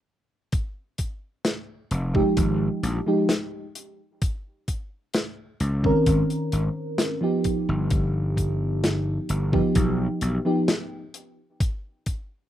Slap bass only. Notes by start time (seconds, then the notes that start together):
1.91 F1
2.37 G#1
2.83 A#1
5.60 C#2
6.06 G#1
6.53 G#1
7.69 G1
9.30 G1
9.76 B1
10.22 B1